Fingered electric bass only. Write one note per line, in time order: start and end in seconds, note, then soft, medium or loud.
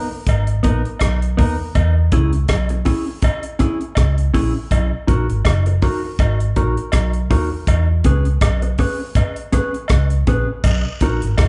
0.27 0.59 G#1 medium
0.65 0.83 A#1 medium
1.02 1.34 B1 loud
1.39 1.57 D#2 medium
1.76 2.08 E2 medium
2.13 2.45 C#2 medium
2.50 2.82 B1 medium
3.98 4.30 C#2 medium
4.35 4.53 A#1 medium
4.72 4.90 B1 loud
5.09 5.27 A#1 medium
5.30 5.44 G#1 medium
5.45 5.78 F#1 loud
6.19 6.52 G#1 medium
6.57 6.75 A#1 loud
6.94 7.26 B1 loud
7.32 7.49 D#2 medium
7.68 8.00 E2 medium
8.05 8.37 C#2 medium
8.42 8.74 B1 loud
9.90 10.23 C#2 medium
10.28 10.46 A#1 medium
10.64 10.82 B1 loud
11.02 11.20 A#1 medium
11.23 11.37 G#1 medium
11.38 11.48 F#1 loud